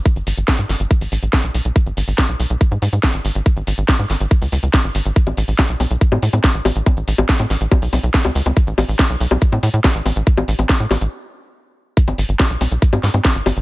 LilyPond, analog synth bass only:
\new Staff \with { instrumentName = "Analog synth bass" } { \clef bass \time 4/4 \key fis \dorian \tempo 4 = 141 r16 gis,,16 gis,,16 gis,,16 r16 gis,16 gis,,16 gis,,16 r16 a,,16 a,,16 a,,16 r16 b,,16 b,,16 b,,16 | r16 gis,,16 gis,,16 gis,,16 r16 b,,16 b,,16 b,,16 r16 gis,16 gis,16 gis,16 r16 gis,,16 gis,,16 gis,,16 | r16 gis,,16 gis,,16 gis,,16 r16 gis,16 gis,,16 gis,,16 r16 cis,16 cis,16 cis,16 r16 gis,,16 gis,,16 gis,,16 | r16 a,,16 a,,16 a,,16 r16 b,,16 b,,16 b,,16 r16 a,16 a,16 a,16 r16 a,,16 a,,16 a,,16 |
r16 a,,16 a,,16 a,,16 r16 a,16 a,,16 a,,16 r16 b,,16 b,,16 b,,16 r16 cis,16 cis,16 cis,16 | r16 a,,16 a,,16 a,,16 r16 b,,16 b,,16 b,,16 r16 a,16 a,16 a,16 r16 a,,16 a,,16 a,,16 | r16 a,,16 a,,16 a,,16 r16 a,16 a,,16 a,,16 r2 | r16 gis,,16 gis,,16 gis,,16 r16 b,,16 b,,16 b,,16 r16 gis,16 gis,16 gis,16 r16 gis,,16 gis,,16 gis,,16 | }